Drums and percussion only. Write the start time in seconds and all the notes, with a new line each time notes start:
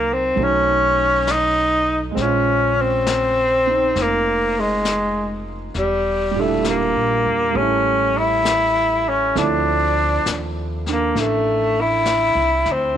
0.37 brush sweep
1.27 snare, hi-hat pedal
2.17 brush sweep, snare
3.07 snare, hi-hat pedal
3.96 brush sweep, snare
4.85 snare, hi-hat pedal
5.74 brush sweep, snare
6.64 snare, hi-hat pedal
7.54 brush sweep
8.45 snare, hi-hat pedal
9.36 brush sweep, snare
10.26 snare, hi-hat pedal
10.86 snare
11.16 brush sweep, snare
12.05 snare, hi-hat pedal
12.65 snare